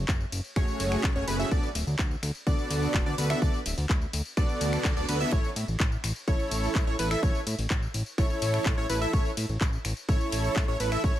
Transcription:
0.08 F#1, kick, clap, tambourine
0.20 tambourine
0.32 F#1, open hi-hat, ride, tambourine
0.44 tambourine
0.56 F#1 A3 C#4 F#4 G#4 C#5, finger snap, kick, tambourine
0.68 tambourine
0.80 F#1, open hi-hat, ride, tambourine
0.92 finger snap, tambourine
1.04 F#2, kick, clap, tambourine
1.16 F#1 A3 C#4 F#4 G#4 C#5
1.27 F#1 A3 C#4 F#4 G#4 B4, open hi-hat, ride, tambourine
1.39 A3 C#4 F#4 G#4 E5, tambourine
1.51 D2 B3 D5, kick, tambourine
1.63 tambourine
1.75 D1, open hi-hat, ride, tambourine
1.87 D2, tambourine
1.99 D2, kick, clap, tambourine
2.11 tambourine
2.23 D2, finger snap, open hi-hat, ride, tambourine
2.35 tambourine
2.47 D2 B3 D4 F#4 A4 D5, kick, tambourine
2.59 tambourine
2.70 D2, open hi-hat, ride, tambourine
2.82 tambourine
2.94 D1, kick, clap, tambourine
3.06 D2 B3 D4 F#4 A4 D5
3.18 D2 B3 D4 F#4 A4 B4, open hi-hat, ride, tambourine
3.30 B3 D4 F#4 A4 E5, finger snap, tambourine
3.42 D2 D4 F#4 A4 D5, kick, tambourine
3.54 tambourine
3.66 D1, open hi-hat, ride, tambourine
3.78 D2, open hi-hat, tambourine
3.89 D2, kick, clap, tambourine
4.01 tambourine
4.13 D2, open hi-hat, ride, tambourine
4.25 tambourine
4.37 D2 B3 D4 F#4 A4 D5, finger snap, kick, tambourine, reverse cymbal
4.49 tambourine
4.61 D2, open hi-hat, ride, tambourine
4.73 finger snap, tambourine
4.85 D2, kick, clap, tambourine
4.97 D1 B3 D4 F#4 A4 D5, tambourine
5.09 D2 B3 D4 F#4 A4 B4, open hi-hat, ride, tambourine
5.20 B3 D4 F#4 A4 E5, tambourine
5.32 A1 E4 A4 C#5, kick, tambourine
5.44 tambourine
5.56 A2, open hi-hat, ride, tambourine
5.68 A1, tambourine
5.80 A1, kick, clap, tambourine
5.92 tambourine
6.04 A1, finger snap, open hi-hat, ride, tambourine
6.16 tambourine
6.28 A1 E4 A4 C#5, kick, tambourine
6.40 tambourine
6.51 A1, open hi-hat, ride, tambourine
6.63 tambourine
6.75 A2, kick, clap, tambourine
6.87 A1 E4 A4 C#5
6.99 A1 E4 A4 B4, open hi-hat, ride, tambourine
7.11 E4 A4 E5, finger snap, tambourine
7.23 A1 A4 C#5, kick, tambourine
7.35 tambourine
7.47 A2, open hi-hat, ride, tambourine
7.59 A1, open hi-hat, tambourine
7.70 A1, kick, clap, tambourine
7.82 tambourine
7.94 A1, open hi-hat, ride, tambourine
8.06 tambourine
8.18 A1 E4 A4 C#5, finger snap, kick, tambourine
8.30 tambourine
8.42 A1, open hi-hat, ride, tambourine
8.54 finger snap, tambourine
8.66 A2, kick, clap, tambourine
8.78 A1 E4 A4 C#5
8.90 A1 E4 A4 B4, open hi-hat, ride, tambourine
9.01 E4 A4 E5, tambourine
9.13 A1 E4 A4 C#5, kick, tambourine
9.25 tambourine
9.37 A2, open hi-hat, ride, tambourine
9.49 A1, tambourine
9.61 A1, kick, clap, tambourine
9.73 tambourine
9.85 A1, finger snap, open hi-hat, ride, tambourine
9.97 tambourine
10.09 A1 E4 A4 C#5, kick, tambourine
10.21 tambourine
10.32 A1, open hi-hat, ride, tambourine
10.44 tambourine
10.56 A2, kick, clap, tambourine
10.68 A1 E4 A4 C#5
10.80 A1 E4 A4 B4, open hi-hat, ride, tambourine
10.92 E4 A4 E5, finger snap, tambourine
11.04 A1 E4 A4 C#5, kick, tambourine
11.16 tambourine

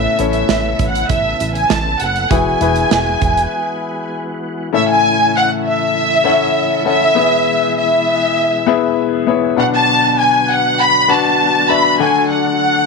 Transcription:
Already playing: A2 C#3 A3 B3 C#4 E4 A4 B4 E5
0.19 A1 C#4 E4 A4 C#5, closed hi-hat
0.30 E5, closed hi-hat
0.49 A1, snare, closed hi-hat
0.79 A1, kick, closed hi-hat
0.90 F#5
0.95 closed hi-hat
1.09 A1 E5, kick, closed hi-hat
1.40 A1, closed hi-hat
1.55 G#5, closed hi-hat
1.70 A1 A5, snare, closed hi-hat
2.00 F#1 F#5, closed hi-hat
2.16 closed hi-hat
2.31 E1 E3 G#3 E4 F#4 G#4 B4 G#5, kick, closed hi-hat
2.61 E1 E4 F#4 G#4 B4, closed hi-hat
2.76 closed hi-hat
2.91 E1, snare, closed hi-hat
3.21 E1, kick, closed hi-hat
3.37 closed hi-hat
4.73 A2 C#3 E3 A3 C#4 E4 A4 C#5 E5
4.90 G#5
5.37 F#5
5.67 E5
6.24 C#4 E4 A4 C#5 F#5
6.85 C#4 E4 A4 C#5 E5 F#5
7.15 B2 E3 G#3 B3 E4 G#4 B4 E5
7.79 E5
8.66 B3 E4 G#4 B4 E5
9.27 B3 E4 G#4 B4 C#5
9.56 B2 D3 F#3 B3 D4 F#4 B4 D5 F#5
9.75 A5
10.21 G#5
10.51 F#5
10.81 B5
11.08 D4 F#4 B4 D5 F#5 A5
11.69 D4 F#4 B4 D5 E5 B5
11.99 D3 F#3 A3 D4 F#4 A4 D5 F#5 G#5
12.31 F#5

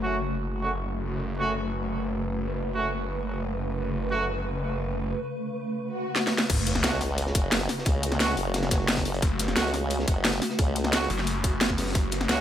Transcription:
Already playing: F#1 C#3 A3 F#4
0.02 A3 C#4 F#4
0.62 A3 C#4 F#4
1.04 F#1 B4
1.38 A3 C#4 F#4
2.75 A3 C#4 F#4
4.11 A3 C#4 F#4
5.82 swell
6.16 snare
6.27 snare
6.38 snare
6.49 F#1 C#3 A3 F#4, kick, closed hi-hat, crash, sub drop
6.67 snare, closed hi-hat
6.75 snare
6.84 C#2 A3 C#4 F#4, snare, closed hi-hat
6.92 closed hi-hat
7.01 snare, closed hi-hat, open hi-hat
7.18 closed hi-hat
7.26 snare
7.35 F#1, kick, closed hi-hat
7.51 snare, closed hi-hat
7.69 snare, closed hi-hat, open hi-hat
7.78 snare
7.85 C#2, kick, closed hi-hat
8.03 closed hi-hat
8.12 snare
8.20 A3 C#4 F#4, snare, closed hi-hat
8.28 snare
8.37 F#1, closed hi-hat, open hi-hat
8.54 snare, closed hi-hat
8.63 snare
8.71 kick, snare, closed hi-hat
8.80 snare
8.88 snare, closed hi-hat
8.97 kick, snare, closed hi-hat
9.05 snare, open hi-hat
9.14 closed hi-hat
9.22 F#1, kick, closed hi-hat
9.39 snare, closed hi-hat
9.48 snare
9.56 C#2 A3 C#4 F#4, snare, closed hi-hat
9.65 closed hi-hat
9.74 snare, closed hi-hat, open hi-hat
9.90 closed hi-hat
9.99 snare
10.08 F#1, kick, closed hi-hat
10.24 snare, closed hi-hat
10.33 closed hi-hat
10.42 snare, closed hi-hat, open hi-hat
10.49 snare
10.59 C#2, kick, closed hi-hat
10.76 closed hi-hat
10.84 snare
10.93 A3 C#4 F#4, snare, closed hi-hat
11.01 snare
11.10 F#1, closed hi-hat, open hi-hat
11.19 snare
11.27 closed hi-hat
11.44 kick, closed hi-hat
11.61 snare, closed hi-hat
11.70 kick, snare
11.78 snare, closed hi-hat, open hi-hat
11.82 snare, closed hi-hat
11.87 snare, closed hi-hat
11.90 snare, closed hi-hat
11.95 F#1 G#4, kick, closed hi-hat
12.12 snare, closed hi-hat
12.21 snare
12.29 C#2 A3 C#4 F#4, snare, closed hi-hat
12.37 closed hi-hat

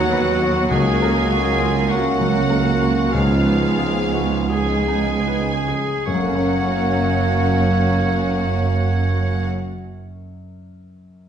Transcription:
Already playing: D#2 F#3 B3 D#4 F4 F#4 B4 F#5
0.12 B3 B4
0.42 F#4
0.69 C#2 G#3 A#3 D#4 F#4 G#4 G#5
1.02 A#4
1.31 F4 F#4
1.61 F4
1.89 F#3 A#3 C#4 F#4 F#5
2.21 F#3
2.50 A#3 A#4
2.82 F#4
3.12 C#2 F3 G#3 B3 D#4 F4 G#4 F5
3.46 B4
3.79 G#4
4.14 F#4
4.50 F3 G#3 C#4 G#4 G#5
4.88 D#4
5.28 B4
5.68 G#4
6.06 F#1 F#2 F#3 A#3 C#4 F#4 C#5 F#5
6.14 F#3
6.21 A#3
6.28 C#4
6.35 C#5

